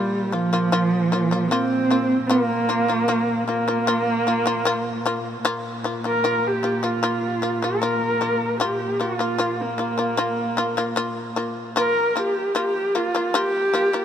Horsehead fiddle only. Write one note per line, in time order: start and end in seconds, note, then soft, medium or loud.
0.00 0.34 G3 medium
0.32 1.49 F3 medium
1.48 2.28 C4 loud
2.27 3.46 A#3 loud
3.47 5.48 A#3 medium
6.07 6.49 A#4 loud
6.48 6.87 G4 medium
6.85 7.66 F4 medium
7.64 8.60 A#4 medium
8.60 9.03 G4 medium
9.01 9.62 F4 medium
9.61 11.46 A#3 medium
11.79 12.10 A#4 loud
12.10 12.21 A#4 medium
12.19 12.57 G4 medium
12.59 12.99 G4 loud
12.97 13.36 F4 medium
13.35 14.05 G4 loud